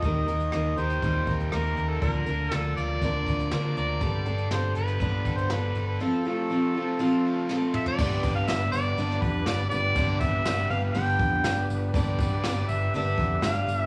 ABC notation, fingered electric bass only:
X:1
M:4/4
L:1/8
Q:1/4=121
K:Gmix
V:1 name="Fingered electric bass" clef=bass
_E,, E,, E,, E,, E,, E,, E,, E,, | D,, D,, D,, D,, D,, D,, D, D,, | G,,, G,,, G,,, G,,, G,,, G,,, G,,, G,,, | z8 |
G,,, G,,, G,,, G,,, G,,, F,, G,,, G,,, | G,,, G,,, G,,, G,,, G,,, F,, G,,, G,,, | G,,, G,,, G,,, G,,, G,,, F,, G,,, G,,, |]